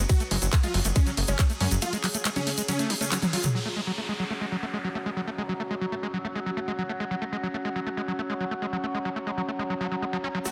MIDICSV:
0, 0, Header, 1, 8, 480
1, 0, Start_track
1, 0, Tempo, 431655
1, 106, Time_signature, 4, 2, 24, 8
1, 11694, End_track
2, 0, Start_track
2, 0, Title_t, "Ambient pad"
2, 0, Program_c, 0, 92
2, 0, Note_on_c, 0, 73, 76
2, 3946, Note_off_c, 0, 73, 0
2, 3946, Note_on_c, 0, 61, 85
2, 4138, Note_on_c, 0, 66, 77
2, 4202, Note_on_c, 0, 78, 77
2, 4619, Note_on_c, 0, 73, 74
2, 11694, Note_off_c, 0, 61, 0
2, 11694, Note_off_c, 0, 66, 0
2, 11694, Note_off_c, 0, 73, 0
2, 11694, Note_off_c, 0, 78, 0
2, 11694, End_track
3, 0, Start_track
3, 0, Title_t, "Synth drone"
3, 0, Program_c, 1, 95
3, 0, Note_on_c, 1, 54, 78
3, 0, Note_on_c, 1, 66, 79
3, 105, Note_on_c, 1, 68, 78
3, 129, Note_off_c, 1, 66, 0
3, 3932, Note_off_c, 1, 54, 0
3, 3945, Note_on_c, 1, 54, 76
3, 3945, Note_on_c, 1, 66, 73
3, 3969, Note_off_c, 1, 68, 0
3, 11649, Note_off_c, 1, 66, 0
3, 11694, Note_off_c, 1, 54, 0
3, 11694, End_track
4, 0, Start_track
4, 0, Title_t, "Supersaw synth"
4, 0, Program_c, 2, 81
4, 105, Note_on_c, 2, 66, 102
4, 220, Note_off_c, 2, 66, 0
4, 705, Note_on_c, 2, 65, 96
4, 877, Note_off_c, 2, 65, 0
4, 1065, Note_on_c, 2, 61, 96
4, 1237, Note_off_c, 2, 61, 0
4, 1425, Note_on_c, 2, 61, 93
4, 1598, Note_off_c, 2, 61, 0
4, 1785, Note_on_c, 2, 61, 87
4, 1900, Note_off_c, 2, 61, 0
4, 2024, Note_on_c, 2, 65, 102
4, 2140, Note_off_c, 2, 65, 0
4, 2625, Note_on_c, 2, 61, 96
4, 2797, Note_off_c, 2, 61, 0
4, 2984, Note_on_c, 2, 61, 99
4, 3157, Note_off_c, 2, 61, 0
4, 3345, Note_on_c, 2, 61, 96
4, 3517, Note_off_c, 2, 61, 0
4, 3705, Note_on_c, 2, 65, 88
4, 3820, Note_off_c, 2, 65, 0
4, 11624, Note_on_c, 2, 66, 100
4, 11694, Note_off_c, 2, 66, 0
4, 11694, End_track
5, 0, Start_track
5, 0, Title_t, "Acid bass"
5, 0, Program_c, 3, 38
5, 106, Note_on_c, 3, 54, 88
5, 154, Note_off_c, 3, 54, 0
5, 226, Note_on_c, 3, 57, 73
5, 255, Note_off_c, 3, 57, 0
5, 346, Note_on_c, 3, 56, 80
5, 394, Note_off_c, 3, 56, 0
5, 466, Note_on_c, 3, 54, 80
5, 514, Note_off_c, 3, 54, 0
5, 585, Note_on_c, 3, 57, 85
5, 614, Note_off_c, 3, 57, 0
5, 705, Note_on_c, 3, 56, 77
5, 754, Note_off_c, 3, 56, 0
5, 825, Note_on_c, 3, 54, 76
5, 874, Note_off_c, 3, 54, 0
5, 945, Note_on_c, 3, 57, 79
5, 974, Note_off_c, 3, 57, 0
5, 1066, Note_on_c, 3, 56, 83
5, 1114, Note_off_c, 3, 56, 0
5, 1186, Note_on_c, 3, 54, 81
5, 1234, Note_off_c, 3, 54, 0
5, 1305, Note_on_c, 3, 57, 80
5, 1335, Note_off_c, 3, 57, 0
5, 1425, Note_on_c, 3, 56, 79
5, 1474, Note_off_c, 3, 56, 0
5, 1546, Note_on_c, 3, 54, 82
5, 1594, Note_off_c, 3, 54, 0
5, 1665, Note_on_c, 3, 57, 80
5, 1695, Note_off_c, 3, 57, 0
5, 1785, Note_on_c, 3, 56, 79
5, 1834, Note_off_c, 3, 56, 0
5, 1905, Note_on_c, 3, 54, 78
5, 1954, Note_off_c, 3, 54, 0
5, 2026, Note_on_c, 3, 57, 88
5, 2055, Note_off_c, 3, 57, 0
5, 2145, Note_on_c, 3, 56, 77
5, 2194, Note_off_c, 3, 56, 0
5, 2265, Note_on_c, 3, 54, 81
5, 2314, Note_off_c, 3, 54, 0
5, 2385, Note_on_c, 3, 57, 74
5, 2414, Note_off_c, 3, 57, 0
5, 2505, Note_on_c, 3, 56, 81
5, 2554, Note_off_c, 3, 56, 0
5, 2625, Note_on_c, 3, 54, 77
5, 2674, Note_off_c, 3, 54, 0
5, 2745, Note_on_c, 3, 57, 76
5, 2775, Note_off_c, 3, 57, 0
5, 2865, Note_on_c, 3, 56, 78
5, 2914, Note_off_c, 3, 56, 0
5, 2985, Note_on_c, 3, 54, 87
5, 3034, Note_off_c, 3, 54, 0
5, 3105, Note_on_c, 3, 57, 78
5, 3225, Note_on_c, 3, 54, 79
5, 3242, Note_off_c, 3, 57, 0
5, 3274, Note_off_c, 3, 54, 0
5, 3345, Note_on_c, 3, 57, 76
5, 3394, Note_off_c, 3, 57, 0
5, 3465, Note_on_c, 3, 54, 83
5, 3538, Note_off_c, 3, 54, 0
5, 3586, Note_on_c, 3, 54, 78
5, 3634, Note_off_c, 3, 54, 0
5, 3706, Note_on_c, 3, 54, 79
5, 3754, Note_off_c, 3, 54, 0
5, 3825, Note_on_c, 3, 54, 75
5, 3874, Note_off_c, 3, 54, 0
5, 3945, Note_on_c, 3, 54, 84
5, 3994, Note_off_c, 3, 54, 0
5, 4065, Note_on_c, 3, 57, 72
5, 4094, Note_off_c, 3, 57, 0
5, 4185, Note_on_c, 3, 56, 77
5, 4234, Note_off_c, 3, 56, 0
5, 4305, Note_on_c, 3, 54, 75
5, 4354, Note_off_c, 3, 54, 0
5, 4425, Note_on_c, 3, 57, 78
5, 4454, Note_off_c, 3, 57, 0
5, 4545, Note_on_c, 3, 56, 74
5, 4594, Note_off_c, 3, 56, 0
5, 4665, Note_on_c, 3, 54, 76
5, 4714, Note_off_c, 3, 54, 0
5, 4785, Note_on_c, 3, 57, 77
5, 4814, Note_off_c, 3, 57, 0
5, 4905, Note_on_c, 3, 56, 78
5, 4954, Note_off_c, 3, 56, 0
5, 5025, Note_on_c, 3, 54, 75
5, 5074, Note_off_c, 3, 54, 0
5, 5145, Note_on_c, 3, 57, 77
5, 5175, Note_off_c, 3, 57, 0
5, 5266, Note_on_c, 3, 56, 76
5, 5314, Note_off_c, 3, 56, 0
5, 5385, Note_on_c, 3, 54, 82
5, 5434, Note_off_c, 3, 54, 0
5, 5506, Note_on_c, 3, 57, 77
5, 5535, Note_off_c, 3, 57, 0
5, 5625, Note_on_c, 3, 56, 73
5, 5674, Note_off_c, 3, 56, 0
5, 5745, Note_on_c, 3, 54, 75
5, 5794, Note_off_c, 3, 54, 0
5, 5865, Note_on_c, 3, 57, 88
5, 5894, Note_off_c, 3, 57, 0
5, 5985, Note_on_c, 3, 56, 76
5, 6034, Note_off_c, 3, 56, 0
5, 6105, Note_on_c, 3, 54, 81
5, 6154, Note_off_c, 3, 54, 0
5, 6225, Note_on_c, 3, 57, 76
5, 6254, Note_off_c, 3, 57, 0
5, 6345, Note_on_c, 3, 56, 85
5, 6394, Note_off_c, 3, 56, 0
5, 6465, Note_on_c, 3, 54, 75
5, 6514, Note_off_c, 3, 54, 0
5, 6585, Note_on_c, 3, 57, 75
5, 6614, Note_off_c, 3, 57, 0
5, 6705, Note_on_c, 3, 56, 75
5, 6754, Note_off_c, 3, 56, 0
5, 6825, Note_on_c, 3, 54, 80
5, 6874, Note_off_c, 3, 54, 0
5, 6945, Note_on_c, 3, 57, 76
5, 6974, Note_off_c, 3, 57, 0
5, 7066, Note_on_c, 3, 56, 78
5, 7114, Note_off_c, 3, 56, 0
5, 7185, Note_on_c, 3, 54, 73
5, 7234, Note_off_c, 3, 54, 0
5, 7305, Note_on_c, 3, 57, 86
5, 7334, Note_off_c, 3, 57, 0
5, 7425, Note_on_c, 3, 56, 75
5, 7474, Note_off_c, 3, 56, 0
5, 7546, Note_on_c, 3, 54, 73
5, 7594, Note_off_c, 3, 54, 0
5, 7665, Note_on_c, 3, 57, 77
5, 7694, Note_off_c, 3, 57, 0
5, 7785, Note_on_c, 3, 56, 86
5, 7834, Note_off_c, 3, 56, 0
5, 7905, Note_on_c, 3, 54, 75
5, 7954, Note_off_c, 3, 54, 0
5, 8025, Note_on_c, 3, 57, 76
5, 8054, Note_off_c, 3, 57, 0
5, 8146, Note_on_c, 3, 56, 75
5, 8194, Note_off_c, 3, 56, 0
5, 8265, Note_on_c, 3, 54, 80
5, 8314, Note_off_c, 3, 54, 0
5, 8385, Note_on_c, 3, 57, 78
5, 8414, Note_off_c, 3, 57, 0
5, 8505, Note_on_c, 3, 56, 74
5, 8554, Note_off_c, 3, 56, 0
5, 8626, Note_on_c, 3, 54, 78
5, 8674, Note_off_c, 3, 54, 0
5, 8745, Note_on_c, 3, 57, 81
5, 8774, Note_off_c, 3, 57, 0
5, 8865, Note_on_c, 3, 56, 75
5, 8914, Note_off_c, 3, 56, 0
5, 8985, Note_on_c, 3, 54, 78
5, 9034, Note_off_c, 3, 54, 0
5, 9105, Note_on_c, 3, 57, 76
5, 9134, Note_off_c, 3, 57, 0
5, 9225, Note_on_c, 3, 56, 82
5, 9274, Note_off_c, 3, 56, 0
5, 9345, Note_on_c, 3, 54, 74
5, 9394, Note_off_c, 3, 54, 0
5, 9465, Note_on_c, 3, 57, 71
5, 9494, Note_off_c, 3, 57, 0
5, 9585, Note_on_c, 3, 56, 74
5, 9634, Note_off_c, 3, 56, 0
5, 9705, Note_on_c, 3, 54, 86
5, 9754, Note_off_c, 3, 54, 0
5, 9825, Note_on_c, 3, 57, 76
5, 9855, Note_off_c, 3, 57, 0
5, 9946, Note_on_c, 3, 56, 78
5, 9994, Note_off_c, 3, 56, 0
5, 10066, Note_on_c, 3, 54, 72
5, 10114, Note_off_c, 3, 54, 0
5, 10185, Note_on_c, 3, 57, 83
5, 10214, Note_off_c, 3, 57, 0
5, 10305, Note_on_c, 3, 56, 72
5, 10354, Note_off_c, 3, 56, 0
5, 10425, Note_on_c, 3, 54, 73
5, 10474, Note_off_c, 3, 54, 0
5, 10545, Note_on_c, 3, 57, 78
5, 10574, Note_off_c, 3, 57, 0
5, 10665, Note_on_c, 3, 56, 82
5, 10714, Note_off_c, 3, 56, 0
5, 10785, Note_on_c, 3, 54, 77
5, 10834, Note_off_c, 3, 54, 0
5, 10905, Note_on_c, 3, 54, 104
5, 10978, Note_off_c, 3, 54, 0
5, 11025, Note_on_c, 3, 54, 72
5, 11074, Note_off_c, 3, 54, 0
5, 11145, Note_on_c, 3, 56, 84
5, 11174, Note_off_c, 3, 56, 0
5, 11265, Note_on_c, 3, 54, 103
5, 11314, Note_off_c, 3, 54, 0
5, 11385, Note_on_c, 3, 61, 97
5, 11434, Note_off_c, 3, 61, 0
5, 11505, Note_on_c, 3, 54, 95
5, 11554, Note_off_c, 3, 54, 0
5, 11625, Note_on_c, 3, 57, 84
5, 11674, Note_off_c, 3, 57, 0
5, 11694, End_track
6, 0, Start_track
6, 0, Title_t, "Analog synth bass"
6, 0, Program_c, 4, 38
6, 345, Note_on_c, 4, 30, 93
6, 416, Note_off_c, 4, 30, 0
6, 465, Note_on_c, 4, 30, 81
6, 536, Note_off_c, 4, 30, 0
6, 825, Note_on_c, 4, 30, 99
6, 896, Note_off_c, 4, 30, 0
6, 945, Note_on_c, 4, 30, 80
6, 1016, Note_off_c, 4, 30, 0
6, 1305, Note_on_c, 4, 30, 91
6, 1376, Note_off_c, 4, 30, 0
6, 1425, Note_on_c, 4, 30, 83
6, 1496, Note_off_c, 4, 30, 0
6, 1785, Note_on_c, 4, 42, 96
6, 1856, Note_off_c, 4, 42, 0
6, 1905, Note_on_c, 4, 30, 80
6, 1976, Note_off_c, 4, 30, 0
6, 11694, End_track
7, 0, Start_track
7, 0, Title_t, "Downlifter"
7, 0, Program_c, 5, 103
7, 3945, Note_on_c, 5, 60, 70
7, 7785, Note_off_c, 5, 60, 0
7, 11694, End_track
8, 0, Start_track
8, 0, Title_t, "Drums"
8, 103, Note_on_c, 9, 82, 62
8, 105, Note_on_c, 9, 36, 114
8, 106, Note_on_c, 9, 42, 96
8, 106, Note_on_c, 9, 51, 69
8, 214, Note_off_c, 9, 82, 0
8, 216, Note_off_c, 9, 36, 0
8, 217, Note_off_c, 9, 42, 0
8, 217, Note_off_c, 9, 51, 0
8, 223, Note_on_c, 9, 82, 37
8, 226, Note_on_c, 9, 42, 40
8, 334, Note_off_c, 9, 82, 0
8, 337, Note_off_c, 9, 42, 0
8, 345, Note_on_c, 9, 46, 106
8, 457, Note_off_c, 9, 46, 0
8, 465, Note_on_c, 9, 42, 42
8, 467, Note_on_c, 9, 82, 81
8, 577, Note_off_c, 9, 42, 0
8, 579, Note_off_c, 9, 82, 0
8, 581, Note_on_c, 9, 82, 58
8, 585, Note_on_c, 9, 36, 113
8, 585, Note_on_c, 9, 39, 127
8, 585, Note_on_c, 9, 42, 97
8, 585, Note_on_c, 9, 51, 75
8, 692, Note_off_c, 9, 82, 0
8, 696, Note_off_c, 9, 36, 0
8, 697, Note_off_c, 9, 39, 0
8, 697, Note_off_c, 9, 42, 0
8, 697, Note_off_c, 9, 51, 0
8, 703, Note_on_c, 9, 82, 35
8, 705, Note_on_c, 9, 42, 43
8, 815, Note_off_c, 9, 82, 0
8, 817, Note_off_c, 9, 42, 0
8, 825, Note_on_c, 9, 46, 101
8, 936, Note_off_c, 9, 46, 0
8, 941, Note_on_c, 9, 82, 77
8, 945, Note_on_c, 9, 42, 43
8, 1052, Note_off_c, 9, 82, 0
8, 1057, Note_off_c, 9, 42, 0
8, 1063, Note_on_c, 9, 82, 57
8, 1065, Note_on_c, 9, 36, 117
8, 1065, Note_on_c, 9, 42, 100
8, 1065, Note_on_c, 9, 51, 75
8, 1174, Note_off_c, 9, 82, 0
8, 1176, Note_off_c, 9, 36, 0
8, 1176, Note_off_c, 9, 42, 0
8, 1176, Note_off_c, 9, 51, 0
8, 1185, Note_on_c, 9, 42, 42
8, 1185, Note_on_c, 9, 82, 38
8, 1296, Note_off_c, 9, 42, 0
8, 1296, Note_off_c, 9, 82, 0
8, 1305, Note_on_c, 9, 46, 103
8, 1416, Note_off_c, 9, 46, 0
8, 1418, Note_on_c, 9, 82, 82
8, 1425, Note_on_c, 9, 42, 41
8, 1529, Note_off_c, 9, 82, 0
8, 1536, Note_off_c, 9, 42, 0
8, 1543, Note_on_c, 9, 82, 58
8, 1545, Note_on_c, 9, 36, 115
8, 1545, Note_on_c, 9, 39, 118
8, 1545, Note_on_c, 9, 42, 93
8, 1545, Note_on_c, 9, 51, 69
8, 1654, Note_off_c, 9, 82, 0
8, 1656, Note_off_c, 9, 36, 0
8, 1657, Note_off_c, 9, 39, 0
8, 1657, Note_off_c, 9, 42, 0
8, 1657, Note_off_c, 9, 51, 0
8, 1665, Note_on_c, 9, 42, 39
8, 1670, Note_on_c, 9, 82, 37
8, 1776, Note_off_c, 9, 42, 0
8, 1781, Note_off_c, 9, 82, 0
8, 1785, Note_on_c, 9, 46, 102
8, 1896, Note_off_c, 9, 46, 0
8, 1905, Note_on_c, 9, 42, 42
8, 1907, Note_on_c, 9, 82, 76
8, 2016, Note_off_c, 9, 42, 0
8, 2018, Note_off_c, 9, 82, 0
8, 2020, Note_on_c, 9, 82, 64
8, 2025, Note_on_c, 9, 42, 94
8, 2025, Note_on_c, 9, 51, 69
8, 2132, Note_off_c, 9, 82, 0
8, 2137, Note_off_c, 9, 42, 0
8, 2137, Note_off_c, 9, 51, 0
8, 2145, Note_on_c, 9, 42, 43
8, 2147, Note_on_c, 9, 82, 37
8, 2256, Note_off_c, 9, 42, 0
8, 2258, Note_off_c, 9, 82, 0
8, 2265, Note_on_c, 9, 39, 66
8, 2265, Note_on_c, 9, 46, 107
8, 2376, Note_off_c, 9, 39, 0
8, 2376, Note_off_c, 9, 46, 0
8, 2382, Note_on_c, 9, 82, 80
8, 2385, Note_on_c, 9, 42, 43
8, 2494, Note_off_c, 9, 82, 0
8, 2496, Note_off_c, 9, 42, 0
8, 2502, Note_on_c, 9, 82, 67
8, 2505, Note_on_c, 9, 39, 126
8, 2505, Note_on_c, 9, 42, 102
8, 2505, Note_on_c, 9, 51, 74
8, 2613, Note_off_c, 9, 82, 0
8, 2616, Note_off_c, 9, 39, 0
8, 2616, Note_off_c, 9, 42, 0
8, 2616, Note_off_c, 9, 51, 0
8, 2625, Note_on_c, 9, 42, 42
8, 2629, Note_on_c, 9, 82, 34
8, 2736, Note_off_c, 9, 42, 0
8, 2740, Note_off_c, 9, 82, 0
8, 2745, Note_on_c, 9, 46, 100
8, 2856, Note_off_c, 9, 46, 0
8, 2863, Note_on_c, 9, 82, 76
8, 2865, Note_on_c, 9, 42, 44
8, 2974, Note_off_c, 9, 82, 0
8, 2976, Note_off_c, 9, 42, 0
8, 2985, Note_on_c, 9, 42, 103
8, 2985, Note_on_c, 9, 51, 73
8, 2988, Note_on_c, 9, 82, 65
8, 3096, Note_off_c, 9, 42, 0
8, 3096, Note_off_c, 9, 51, 0
8, 3100, Note_off_c, 9, 82, 0
8, 3104, Note_on_c, 9, 82, 39
8, 3105, Note_on_c, 9, 42, 44
8, 3215, Note_off_c, 9, 82, 0
8, 3216, Note_off_c, 9, 42, 0
8, 3225, Note_on_c, 9, 38, 60
8, 3225, Note_on_c, 9, 46, 100
8, 3336, Note_off_c, 9, 38, 0
8, 3336, Note_off_c, 9, 46, 0
8, 3345, Note_on_c, 9, 42, 40
8, 3356, Note_on_c, 9, 82, 81
8, 3456, Note_off_c, 9, 42, 0
8, 3465, Note_on_c, 9, 38, 78
8, 3465, Note_on_c, 9, 39, 126
8, 3465, Note_on_c, 9, 42, 94
8, 3465, Note_on_c, 9, 51, 73
8, 3467, Note_off_c, 9, 82, 0
8, 3474, Note_on_c, 9, 82, 61
8, 3576, Note_off_c, 9, 38, 0
8, 3576, Note_off_c, 9, 39, 0
8, 3576, Note_off_c, 9, 42, 0
8, 3576, Note_off_c, 9, 51, 0
8, 3581, Note_off_c, 9, 82, 0
8, 3581, Note_on_c, 9, 82, 38
8, 3585, Note_on_c, 9, 42, 42
8, 3585, Note_on_c, 9, 47, 72
8, 3693, Note_off_c, 9, 82, 0
8, 3696, Note_off_c, 9, 42, 0
8, 3696, Note_off_c, 9, 47, 0
8, 3705, Note_on_c, 9, 46, 109
8, 3814, Note_on_c, 9, 82, 79
8, 3816, Note_off_c, 9, 46, 0
8, 3825, Note_on_c, 9, 42, 43
8, 3825, Note_on_c, 9, 45, 92
8, 3926, Note_off_c, 9, 82, 0
8, 3936, Note_off_c, 9, 42, 0
8, 3936, Note_off_c, 9, 45, 0
8, 11625, Note_on_c, 9, 82, 65
8, 11694, Note_off_c, 9, 82, 0
8, 11694, End_track
0, 0, End_of_file